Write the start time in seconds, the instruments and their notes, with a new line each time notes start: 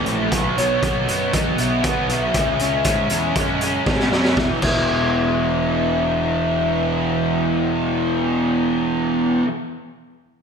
Already playing: distorted electric guitar A2
0.06 picked electric bass A#1, distorted electric guitar E3 A3, closed hi-hat
0.31 picked electric bass B1, distorted electric guitar B2 F#3 B3, kick, closed hi-hat
0.57 picked electric bass B1, distorted electric guitar F#3 B3, soft synth lead C#5, closed hi-hat
0.82 picked electric bass B1, distorted electric guitar B2 F#3 B3, kick, closed hi-hat
1.08 picked electric bass F#2, distorted electric guitar F#3 B3, closed hi-hat
1.33 picked electric bass E2, distorted electric guitar B2 F#3 B3, soft synth lead D#5, kick, closed hi-hat
1.58 picked electric bass B1, distorted electric guitar F#3 B3, soft synth lead E5, closed hi-hat
1.83 distorted electric guitar B2 F#3 B3, picked electric bass B2, soft synth lead F#5, kick, closed hi-hat
2.08 picked electric bass B1, distorted electric guitar F#3 B3, soft synth lead E5, closed hi-hat
2.34 picked electric bass C#2, distorted electric guitar C#3 G#3 C#4, kick, closed hi-hat
2.59 picked electric bass C#2, distorted electric guitar G#3 C#4, closed hi-hat
2.84 picked electric bass G#2, distorted electric guitar C#3 G#3 C#4, kick, closed hi-hat
3.09 picked electric bass E2, distorted electric guitar G#3 C#4, closed hi-hat
3.35 picked electric bass F#2, distorted electric guitar C#3 G#3 C#4, kick, closed hi-hat
3.61 distorted electric guitar G#3 C#4, closed hi-hat
3.86 picked electric bass G#2, distorted electric guitar C#3 G#3 C#4, kick, snare
4.00 snare
4.11 picked electric bass F#2, distorted electric guitar G#3 C#4, snare
4.24 snare
4.35 picked electric bass E1, distorted electric guitar E2 B2 E3, soft synth lead E5, kick, snare
4.61 picked electric bass E1, distorted electric guitar E2 B2, soft synth lead E5, kick, crash
4.65 distorted electric guitar E3